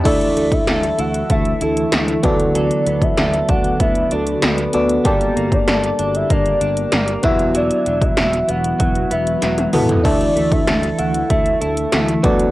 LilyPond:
<<
  \new Staff \with { instrumentName = "Soft synth lead" } { \time 4/4 \key d \major \tempo 4 = 96 d''8. e''8. fis''8 e''8 a'4 r8 | d''8. e''8. fis''8 e''8 a'4 r8 | bes'8. d''16 d''8. e''16 d''4. r8 | d''8. e''8. fis''8 fis''8 e''4 r8 |
d''8. e''8. fis''8 e''8 a'4 r8 | }
  \new Staff \with { instrumentName = "FM electric piano" } { \time 4/4 \key d \major <d' e' a' e''>2.~ <d' e' a' e''>8 <b fis' a' d''>8~ | <b fis' a' d''>2.~ <b fis' a' d''>8 <b fis' a' d''>8 | <bes g' d'' a''>2.~ <bes g' d'' a''>8 <b e' fis' e''>8~ | <b e' fis' e''>2.~ <b e' fis' e''>8 <b e' fis' a'>8 |
<d' e' a' e''>2.~ <d' e' a' e''>8 <b fis' a' d''>8 | }
  \new Staff \with { instrumentName = "Ambient pad" } { \time 4/4 \key d \major << { <e e'>2.~ <e e'>8 <b fis'>8~ | <b fis'>1 | <bes g'>2.~ <bes g'>8 <fis b fis'>8~ | <fis b fis'>1 |
<a e'>2.~ <a e'>8 <b fis'>8 | } \\ { d1~ | d1~ | d2.~ d8 e8~ | e1 |
d1 | } >> }
  \new Staff \with { instrumentName = "Clean electric guitar" } { \time 4/4 \key d \major <a a'>8 a8 a'8 e'8 a8 e'8 a8 fis8 | <fis a'>8 b8 a'8 d'8 b8 d'8 b8 d'8 | <g a'>8 bes8 a'8 d'8 bes8 d'8 bes8 fis8 | <fis e'>8 fis8 e'8 b8 fis8 b8 fis8 b8 |
<a a'>8 a8 a'8 e'8 a8 e'8 a8 fis8 | }
  \new Staff \with { instrumentName = "Fretless electric bass" } { \clef bass \time 4/4 \key d \major d,8 d,8 d,8 d,8 d,8 d,8 d,8 d,8~ | d,8 d,8 d,8 d,8 d,8 d,8 d,8 d,8 | g,,8 g,,8 g,,8 g,,8 g,,8 g,,8 g,,8 e,,8~ | e,,8 e,,8 e,,8 e,,8 e,,8 e,,8 e,,8 e,,8 |
d,8 d,8 d,8 d,8 d,8 d,8 d,8 d,8 | }
  \new DrumStaff \with { instrumentName = "Drums" } \drummode { \time 4/4 <cymc hh bd>16 hh16 hh16 <hh bd>16 <hh sn>16 hh16 hh16 hh16 <hh bd>16 hh16 hh16 hh16 <hh sn>16 hh16 <hh bd>16 hh16 | hh16 hh16 hh16 <hh bd>16 <hh sn>16 hh16 <hh bd>16 hh16 <hh bd>16 hh16 hh16 hh16 <hh sn>16 hh16 hh16 hh16 | <hh bd>16 hh16 hh16 <hh bd>16 <hh sn>16 hh16 hh16 hh16 <hh bd>16 hh16 hh16 hh16 <hh sn>16 hh16 <hh bd>16 hh16 | hh16 hh16 hh16 <hh bd>16 <hh sn>16 hh16 hh16 hh16 <hh bd>16 hh16 hh16 hh16 <hh sn>16 <hh tommh>16 <hho toml>16 <hh tomfh>16 |
<cymc bd>16 hh16 hh16 <hh bd>16 <hh sn>16 hh16 hh16 hh16 <hh bd>16 hh16 hh16 hh16 <hh sn>16 hh16 <hh bd>16 hh16 | }
>>